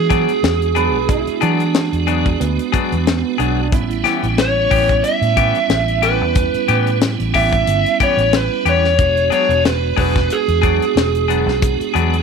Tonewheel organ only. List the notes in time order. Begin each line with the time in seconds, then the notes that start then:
Already playing: G#3 B3 D4 F#4
3.73 G3 B3 C#4 E4
8.99 G#3 B3 D4 F#4